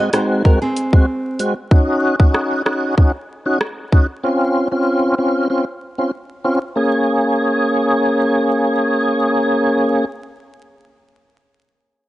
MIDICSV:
0, 0, Header, 1, 4, 480
1, 0, Start_track
1, 0, Key_signature, -5, "minor"
1, 0, Tempo, 631579
1, 1301, Time_signature, 4, 2, 24, 8
1, 9188, End_track
2, 0, Start_track
2, 0, Title_t, "Nylon-string guitar"
2, 0, Program_c, 0, 24
2, 0, Note_on_c, 0, 66, 64
2, 0, Note_on_c, 0, 75, 77
2, 96, Note_off_c, 0, 75, 0
2, 98, Note_off_c, 0, 66, 0
2, 102, Note_on_c, 0, 72, 77
2, 107, Note_on_c, 0, 63, 65
2, 329, Note_off_c, 0, 72, 0
2, 332, Note_off_c, 0, 63, 0
2, 342, Note_on_c, 0, 70, 80
2, 462, Note_off_c, 0, 70, 0
2, 468, Note_on_c, 0, 68, 75
2, 473, Note_on_c, 0, 60, 62
2, 1158, Note_off_c, 0, 68, 0
2, 1160, Note_off_c, 0, 60, 0
2, 9188, End_track
3, 0, Start_track
3, 0, Title_t, "Tonewheel organ"
3, 0, Program_c, 1, 16
3, 98, Note_on_c, 1, 56, 75
3, 100, Note_on_c, 1, 60, 69
3, 102, Note_on_c, 1, 66, 85
3, 322, Note_off_c, 1, 56, 0
3, 322, Note_off_c, 1, 60, 0
3, 324, Note_off_c, 1, 66, 0
3, 338, Note_on_c, 1, 56, 87
3, 340, Note_on_c, 1, 60, 86
3, 342, Note_on_c, 1, 66, 98
3, 449, Note_off_c, 1, 56, 0
3, 450, Note_off_c, 1, 60, 0
3, 451, Note_off_c, 1, 66, 0
3, 706, Note_on_c, 1, 56, 75
3, 709, Note_on_c, 1, 60, 67
3, 711, Note_on_c, 1, 66, 81
3, 804, Note_off_c, 1, 56, 0
3, 806, Note_off_c, 1, 60, 0
3, 807, Note_off_c, 1, 66, 0
3, 1060, Note_on_c, 1, 56, 70
3, 1062, Note_on_c, 1, 60, 68
3, 1064, Note_on_c, 1, 66, 80
3, 1170, Note_off_c, 1, 56, 0
3, 1171, Note_off_c, 1, 60, 0
3, 1172, Note_off_c, 1, 66, 0
3, 1300, Note_on_c, 1, 61, 93
3, 1302, Note_on_c, 1, 63, 84
3, 1305, Note_on_c, 1, 66, 98
3, 1637, Note_off_c, 1, 61, 0
3, 1638, Note_off_c, 1, 63, 0
3, 1639, Note_off_c, 1, 66, 0
3, 1667, Note_on_c, 1, 61, 76
3, 1669, Note_on_c, 1, 63, 72
3, 1671, Note_on_c, 1, 66, 85
3, 1993, Note_off_c, 1, 61, 0
3, 1994, Note_off_c, 1, 63, 0
3, 1995, Note_off_c, 1, 66, 0
3, 2018, Note_on_c, 1, 61, 75
3, 2021, Note_on_c, 1, 63, 68
3, 2024, Note_on_c, 1, 66, 80
3, 2242, Note_off_c, 1, 61, 0
3, 2243, Note_off_c, 1, 63, 0
3, 2244, Note_off_c, 1, 66, 0
3, 2259, Note_on_c, 1, 61, 85
3, 2261, Note_on_c, 1, 63, 84
3, 2263, Note_on_c, 1, 66, 95
3, 2370, Note_off_c, 1, 61, 0
3, 2371, Note_off_c, 1, 63, 0
3, 2372, Note_off_c, 1, 66, 0
3, 2626, Note_on_c, 1, 61, 75
3, 2628, Note_on_c, 1, 63, 66
3, 2631, Note_on_c, 1, 66, 78
3, 2725, Note_off_c, 1, 61, 0
3, 2726, Note_off_c, 1, 63, 0
3, 2727, Note_off_c, 1, 66, 0
3, 2979, Note_on_c, 1, 61, 70
3, 2981, Note_on_c, 1, 63, 68
3, 2983, Note_on_c, 1, 66, 82
3, 3090, Note_off_c, 1, 61, 0
3, 3091, Note_off_c, 1, 63, 0
3, 3092, Note_off_c, 1, 66, 0
3, 3219, Note_on_c, 1, 60, 92
3, 3221, Note_on_c, 1, 61, 82
3, 3223, Note_on_c, 1, 65, 100
3, 3556, Note_off_c, 1, 60, 0
3, 3557, Note_off_c, 1, 61, 0
3, 3558, Note_off_c, 1, 65, 0
3, 3585, Note_on_c, 1, 60, 73
3, 3587, Note_on_c, 1, 61, 67
3, 3589, Note_on_c, 1, 65, 81
3, 3912, Note_off_c, 1, 60, 0
3, 3913, Note_off_c, 1, 61, 0
3, 3914, Note_off_c, 1, 65, 0
3, 3939, Note_on_c, 1, 60, 72
3, 3941, Note_on_c, 1, 61, 69
3, 3944, Note_on_c, 1, 65, 81
3, 4162, Note_off_c, 1, 60, 0
3, 4163, Note_off_c, 1, 61, 0
3, 4164, Note_off_c, 1, 65, 0
3, 4179, Note_on_c, 1, 60, 82
3, 4181, Note_on_c, 1, 61, 78
3, 4184, Note_on_c, 1, 65, 94
3, 4290, Note_off_c, 1, 60, 0
3, 4291, Note_off_c, 1, 61, 0
3, 4292, Note_off_c, 1, 65, 0
3, 4546, Note_on_c, 1, 60, 69
3, 4549, Note_on_c, 1, 61, 62
3, 4551, Note_on_c, 1, 65, 75
3, 4644, Note_off_c, 1, 60, 0
3, 4646, Note_off_c, 1, 61, 0
3, 4647, Note_off_c, 1, 65, 0
3, 4898, Note_on_c, 1, 60, 67
3, 4900, Note_on_c, 1, 61, 64
3, 4903, Note_on_c, 1, 65, 76
3, 5009, Note_off_c, 1, 60, 0
3, 5010, Note_off_c, 1, 61, 0
3, 5011, Note_off_c, 1, 65, 0
3, 5136, Note_on_c, 1, 58, 79
3, 5140, Note_on_c, 1, 61, 76
3, 5144, Note_on_c, 1, 68, 91
3, 7636, Note_off_c, 1, 58, 0
3, 7638, Note_off_c, 1, 61, 0
3, 7640, Note_off_c, 1, 68, 0
3, 9188, End_track
4, 0, Start_track
4, 0, Title_t, "Drums"
4, 98, Note_on_c, 9, 42, 71
4, 103, Note_on_c, 9, 37, 89
4, 174, Note_off_c, 9, 42, 0
4, 179, Note_off_c, 9, 37, 0
4, 342, Note_on_c, 9, 36, 91
4, 418, Note_off_c, 9, 36, 0
4, 581, Note_on_c, 9, 42, 71
4, 657, Note_off_c, 9, 42, 0
4, 707, Note_on_c, 9, 36, 86
4, 783, Note_off_c, 9, 36, 0
4, 1059, Note_on_c, 9, 42, 76
4, 1135, Note_off_c, 9, 42, 0
4, 1301, Note_on_c, 9, 36, 115
4, 1377, Note_off_c, 9, 36, 0
4, 1669, Note_on_c, 9, 36, 90
4, 1745, Note_off_c, 9, 36, 0
4, 1782, Note_on_c, 9, 37, 84
4, 1858, Note_off_c, 9, 37, 0
4, 2023, Note_on_c, 9, 37, 86
4, 2099, Note_off_c, 9, 37, 0
4, 2263, Note_on_c, 9, 36, 90
4, 2339, Note_off_c, 9, 36, 0
4, 2741, Note_on_c, 9, 37, 83
4, 2817, Note_off_c, 9, 37, 0
4, 2982, Note_on_c, 9, 36, 80
4, 3058, Note_off_c, 9, 36, 0
4, 9188, End_track
0, 0, End_of_file